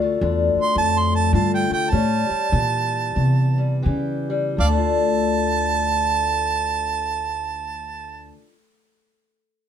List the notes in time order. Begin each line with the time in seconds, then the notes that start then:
Already playing: D2 D4 F4
0.02 A3
0.21 E2 D3 D4
0.55 muted upright bass stroke
0.61 C6
0.76 F2 A2 A5
0.99 C6
1.12 A3 A5
1.33 G2 D3 F4 A5
1.54 G5
1.70 A3 G5, muted upright bass stroke
1.90 A2 G3 C#4 G4 A5
2.29 G3, muted upright bass stroke
2.52 A#2 E3
3.15 E2 C3
3.58 G3
3.82 C#3 E3 G4
4.30 G3
4.57 D2 D5 F5 A5
4.62 D3
4.67 A3
4.72 D4
4.77 F4